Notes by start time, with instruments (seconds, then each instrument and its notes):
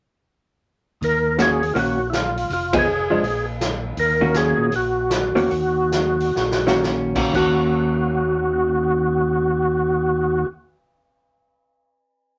1.01 tonewheel organ D#2 A#4, kick, open hi-hat
1.38 hollow-body jazz guitar D#3 A#3 C#4 F#4, tonewheel organ G#4, snare, closed hi-hat
1.63 open hi-hat
1.74 tonewheel organ A#1 F4, hollow-body jazz guitar D#3 A#3 C#4 F#4, kick, open hi-hat
1.79 tonewheel organ F#4
2.10 tonewheel organ E4, snare, closed hi-hat
2.16 tonewheel organ F4
2.37 open hi-hat
2.49 tonewheel organ F1, kick, open hi-hat
2.53 tonewheel organ F4
2.73 hollow-body jazz guitar F3 B3 D#4 G#4, kick, ride
2.79 tonewheel organ G#4
3.10 hollow-body jazz guitar F3 G#3 D4
3.23 tonewheel organ A#1, kick, open hi-hat
3.61 snare, closed hi-hat
3.97 tonewheel organ D#2 A#4, kick, open hi-hat
4.21 hollow-body jazz guitar D#3 A#3 C#4 F#4
4.34 tonewheel organ G#4, snare, closed hi-hat
4.58 tonewheel organ A#2
4.72 tonewheel organ A#1, kick, open hi-hat
4.76 tonewheel organ F#4
5.11 snare, closed hi-hat
5.35 tonewheel organ E2, hollow-body jazz guitar D#3 A#3 C#4 F#4, open hi-hat
5.50 tonewheel organ D#2, kick, open hi-hat
5.92 snare, closed hi-hat
6.20 open hi-hat
6.36 tonewheel organ A#1, snare
6.51 snare
6.67 hollow-body jazz guitar D#3 A#3 C#4 F#4, snare
6.83 snare
7.15 hollow-body jazz guitar D#3 A#3 C#4 F#4, kick, crash
7.33 tonewheel organ D#2 F#4, hollow-body jazz guitar D#3 A#3 C#4 F#4, kick, crash